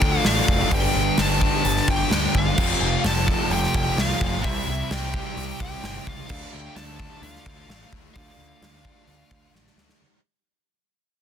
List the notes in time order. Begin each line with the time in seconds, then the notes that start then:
Already playing: D3 F3 A3 D4 G5
0.02 D2, kick
0.23 A1 D3 A3 D4 F5, snare, open hi-hat
0.48 F1, kick
0.71 G1 G2 D3 G3 B3 D4 G5, kick, open hi-hat
0.95 G1
1.18 G1 A5, snare, open hi-hat
1.40 G2 D3 G3, kick
1.65 G1, open hi-hat
1.77 snare
1.88 G1 G4 G5, kick
2.10 D2 G2 D3 G3, snare, open hi-hat
2.35 G1 F4 F5, kick
2.57 F1 F2 C3 F3 A3 C4 F4, kick, crash
2.80 F1
3.04 F1 A4 A5, snare, open hi-hat
3.27 F2 C3 F3, kick
3.50 F1 G4 G5, open hi-hat
3.64 snare
3.74 F1 G4 G5, kick
3.96 C2 F2 C3 F3 F4, snare, open hi-hat
4.00 F5
4.21 F1, kick
4.43 C2 C3 E3 G3 C4 E4 E5, kick, open hi-hat
4.67 C2 E4 E5
4.91 C2 G4 G5, snare, open hi-hat
5.14 C3 G3 C4, kick
5.37 C2, open hi-hat
5.60 C2 G4 G5, kick
5.83 G1 C3 G3 C4, snare, open hi-hat
6.07 C#2 F4 F5, kick
6.29 D2 D3 A3 D4 F4, kick, crash
6.53 D2 G4 G5
6.76 D2 A4 A5, snare, open hi-hat
6.98 D3 A3 D4, kick
7.22 D2 F4 F5, open hi-hat
7.35 snare
7.46 D2, kick
7.67 A1 D3 A3 D4, snare, open hi-hat
7.93 D2, kick
8.14 D2 D3 A3 D4 F4 F5, kick, open hi-hat
8.37 D2
8.61 D2, snare, open hi-hat
8.83 D3 A3 D4, kick
9.07 D2, open hi-hat
9.31 D2, kick
9.53 A1 D3 A3 D4, snare
9.67 snare
9.76 D2, snare
9.89 snare